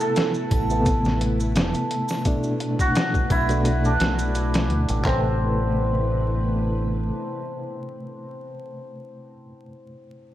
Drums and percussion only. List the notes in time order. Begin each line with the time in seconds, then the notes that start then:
0.00 maracas
0.16 snare, closed hi-hat, maracas
0.34 maracas
0.51 kick, closed hi-hat, triangle
0.70 maracas
0.86 kick, closed hi-hat, maracas
1.05 snare, maracas
1.21 closed hi-hat
1.40 maracas
1.56 snare, closed hi-hat, maracas
1.74 closed hi-hat, maracas
1.91 closed hi-hat
2.08 snare, triangle, maracas
2.25 kick, closed hi-hat, maracas
2.43 maracas
2.60 closed hi-hat
2.79 kick, maracas
2.95 snare, closed hi-hat, maracas
3.14 kick, maracas
3.30 kick, closed hi-hat, triangle
3.49 closed hi-hat, maracas
3.65 closed hi-hat, maracas
3.85 maracas
4.00 snare, closed hi-hat
4.19 closed hi-hat, maracas
4.35 closed hi-hat, maracas
4.54 snare, closed hi-hat, maracas
4.70 closed hi-hat
4.89 closed hi-hat, maracas
5.05 kick, clap